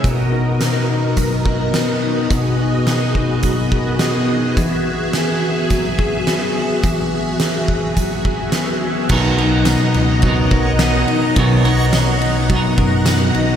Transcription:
0.03 B2 B3 F#4 A#4 D#5, kick, closed hi-hat
0.31 D#4
0.60 A#4, snare, closed hi-hat
0.88 D#4
1.17 F#3, kick, closed hi-hat
1.45 A#4, kick
1.73 B3, snare, closed hi-hat
2.02 D#4
2.30 B2 G#4, kick, closed hi-hat
2.58 D#4
2.87 A#4, snare, closed hi-hat
3.15 D#4, kick
3.43 F#3, kick, closed hi-hat
3.72 A#4, kick
3.99 B3, snare, closed hi-hat
4.28 D#4
4.56 E3 E5, kick, closed hi-hat
4.85 F#4
5.13 G#4, snare, closed hi-hat
5.42 F#4
5.70 F#3, kick, closed hi-hat
5.98 G#4, kick
6.27 B3, snare, closed hi-hat
6.56 F#4
6.83 E3, kick, closed hi-hat
7.12 F#4
7.40 G#4, snare, closed hi-hat
7.68 F#4, kick
7.96 F#3, kick, closed hi-hat
8.25 G#4, kick
8.52 B3, snare, closed hi-hat
8.82 F#4
9.08 B1 B2 D#3 F#3 B3 D#4 A#4 D#5 F#5 A#5, kick, crash
9.38 F#3 B3 D#4 A#4 C#5, ride
9.58 F#5
9.65 B3, snare, ride, tambourine
9.94 C#2 D#4, ride
10.22 F#3 B3, kick, ride
10.27 D#4 A#4
10.51 B1 A#4, kick, ride
10.79 B3, snare, ride, tambourine
11.08 D#4, ride
11.36 B1 B2 D#3 F#3 B3 D#4 A#4, kick, ride
11.65 F#3 B3 D#4 A#4, ride
11.93 B3, snare, ride, tambourine
12.21 D#4, ride
12.49 F#3 B3, kick, ride
12.54 D#4 A#4
12.78 F#2 A#4, kick, ride
13.06 B3, snare, ride, tambourine
13.34 B1 D#4, ride

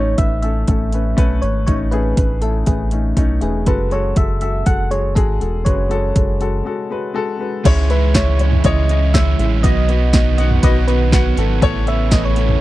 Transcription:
Already playing: A1 A3 C#4 D#4 B4 C#5
0.17 A1 A3 C#4 B4 E5, kick, closed hi-hat
0.42 A3 C#4 A4 E5, closed hi-hat
0.68 A1 A3 C#4 A4, kick, closed hi-hat
0.92 A3 C#4 B4, closed hi-hat
1.17 B1 A3 C#4 B4, kick, closed hi-hat
1.42 G#1 A3 C#4 B4 C#5, closed hi-hat
1.67 A1 A3 C#4 D#4 C#5, kick, closed hi-hat
1.91 A3 C#4 G#4 B4, closed hi-hat
2.17 A1 A3 C#4 B4, kick, closed hi-hat
2.41 A3 C#4 E4 A4, closed hi-hat
2.66 A1 A3 C#4 G#4 B4, kick, closed hi-hat
2.91 A3 C#4 D#4, closed hi-hat
3.17 B1 A3 C#4 D#4, kick, closed hi-hat
3.41 E1 A3 C#4 G#4 B4, closed hi-hat
3.66 F#1 C#3 G#3 F#4 A4 B4, kick, closed hi-hat
3.91 G#3 F#4 A4 C#5, closed hi-hat
4.16 F#1 G#3 F#4 A4 E5, kick, closed hi-hat
4.41 G#3 F#4 A4 E5, closed hi-hat
4.66 F#1 G#3 F#4 A4 F#5, kick, closed hi-hat
4.90 G#3 F#4 G#4 C#5, closed hi-hat
5.15 G#1 G#3 F#4 G#4 A4, kick, closed hi-hat
5.40 E1 G#3 F#4 A4, closed hi-hat
5.65 F#1 C#3 G#3 F#4 B4 C#5, kick, closed hi-hat
5.89 G#3 F#4 A4, closed hi-hat
6.15 F#1 G#3 F#4 A4, kick, closed hi-hat
6.40 G#3 F#4 A4, closed hi-hat
6.65 G#3 F#4 A4
6.90 G#3 F#4 B4
7.14 G#3 F#4 A4
7.39 G#3 F#4 B4
7.64 C#2 G#2 C#3 E3 G#3 C#4 E4 C#5, kick, closed hi-hat, crash
7.89 G#3 C#4 E4 B4 E5, closed hi-hat
8.14 E3 G#3 C#4 E4 C#5 E5, kick, snare, clap, closed hi-hat
8.39 G#3 C#4 E4 C#5, closed hi-hat
8.52 floor tom
8.64 C#2 C#3 E3 G#3 C#4 E4 C#5 D#5, kick, closed hi-hat
8.89 G#3 C#4 E4 D#5, closed hi-hat
9.14 E3 G#3 C#4 E4 C#5 E5, kick, snare, clap, closed hi-hat
9.38 A1 G#3 C#4 E4 E5, closed hi-hat
9.63 B1 B2 D#3 F#3 B3 D#4 F#4 D#5, kick, closed hi-hat
9.88 B3 D#4 F#4 D#5, closed hi-hat
10.13 F#3 B3 D#4 F#4 D#5, kick, snare, clap, closed hi-hat
10.38 B3 D#4 F#4 D#5 F#5, closed hi-hat
10.51 floor tom
10.63 B1 B2 F#3 B3 D#4 F#4 B4 D#5, kick, closed hi-hat
10.87 B3 D#4 F#4 B4 D#5, closed hi-hat
11.12 F#3 B3 D#4 F#4 F#5, kick, snare, clap, closed hi-hat
11.37 G#1 B3 D#4 F#4 A4, closed hi-hat
11.61 A1 C#3 E3 A3 B3 C#4 E4 A4 C#5, kick, closed hi-hat
11.86 B3 C#4 E4 A4 C#5 E5, closed hi-hat
12.11 E3 B3 C#4 E4 A4 B4 D#5, kick, snare, clap, closed hi-hat
12.25 C#5
12.36 B3 C#4 E4 A4 E5, closed hi-hat
12.49 floor tom

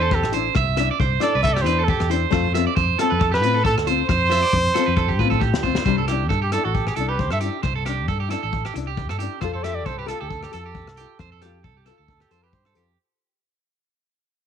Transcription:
Already playing: E2 C5
0.01 A4
0.11 G4 A4, kick
0.23 A1, cross-stick
0.32 D4 E4 C5, closed hi-hat
0.55 C2 E5, kick, cross-stick
0.76 D4 E4 E5, cross-stick, closed hi-hat
0.91 D5
1.00 C2 C5, kick
1.20 D4 E4 A4 D5, cross-stick, closed hi-hat
1.35 C2 B4
1.43 A4 E5, kick
1.53 G4 D5, cross-stick
1.62 E4 C5
1.66 E2 D4 B4, closed hi-hat
1.79 A4
1.84 A4
1.88 G4, kick
2.00 E2, cross-stick
2.10 D4 E4 C5, closed hi-hat
2.30 F2 A3 C4 F4 C5, kick, cross-stick
2.54 C4 F4 E5, cross-stick, closed hi-hat
2.67 D5
2.76 F2 C5, kick
2.98 C4 F4 A4, cross-stick, closed hi-hat
3.10 F2 B4
3.20 A4, kick
3.32 G4 B4, cross-stick
3.41 A2 C4 F4 B4, closed hi-hat
3.54 A4
3.64 A4, kick
3.78 D2, cross-stick
3.87 C4 F4 C5, closed hi-hat
4.09 F2 C5, kick, cross-stick
4.29 F4 E5, cross-stick, closed hi-hat
4.43 D5
4.53 F2, kick
4.74 F4 A4, cross-stick, closed hi-hat
4.79 C4
4.86 F2 B4
4.96 A4, kick
5.08 G4, kick
5.19 A2 F4 B4, kick
5.24 C4
5.30 A4, kick
5.41 G4, kick
5.54 D2, snare
5.63 C4 F4 C5, kick
5.75 snare
5.85 C2 G3 D4 C5, kick, cross-stick
5.89 muted nylon-string guitar stroke
5.98 A4
6.08 E4 G4, cross-stick, closed hi-hat
6.12 D4
6.29 G2 A4, kick
6.42 G4
6.52 E4 A4, cross-stick, closed hi-hat
6.57 D4
6.65 A1 F#4 A4
6.74 G4, kick
6.87 G4 G#4, cross-stick
6.96 C2 E4 A4, closed hi-hat
7.00 D4
7.09 G4 B4
7.19 C5, kick
7.30 G2 A4 E5, cross-stick
7.41 E4 G4, closed hi-hat
7.45 D4
7.63 C2 C5, kick, cross-stick
7.75 A4
7.85 D4 G4, muted nylon-string guitar stroke, cross-stick, closed hi-hat
8.08 G2 A4, kick
8.20 G4
8.29 D4 E4 A4, cross-stick, closed hi-hat
8.43 A1 A4
8.53 kick
8.65 G4, cross-stick
8.74 C2 D4 E4, muted clean electric guitar stroke, closed hi-hat
8.87 G4
8.97 kick
9.09 G2 A4, cross-stick
9.19 D4 E4 G4, closed hi-hat
9.41 F2 C4 F4 A4 C5, kick, cross-stick
9.54 A4 C5
9.64 F4 G4 A4 E5, cross-stick, closed hi-hat
9.75 D5
9.86 C2 A4 C5, kick
9.98 G4 B4
10.06 F4 A4, cross-stick, closed hi-hat
10.20 D2 G4 A4
10.30 A4, kick
10.43 G4, cross-stick
10.52 F2 A4, closed hi-hat
10.56 F4
10.66 G4
10.75 kick
10.87 C2, cross-stick
10.97 F4 G4, closed hi-hat
11.19 F2 C5, kick, cross-stick
11.32 A4
11.41 F4 G4 A4, cross-stick, closed hi-hat
11.64 C2 A4, kick
11.77 G4
11.86 A4, cross-stick, closed hi-hat
11.91 F4
11.98 D2 A4
12.08 A4, kick
12.20 G4, cross-stick
12.31 F2 F4 A4 C5, closed hi-hat
12.43 G4 B4
12.53 G2 C5, kick
12.65 A4, cross-stick
12.75 F2 F4 G4 A4, closed hi-hat

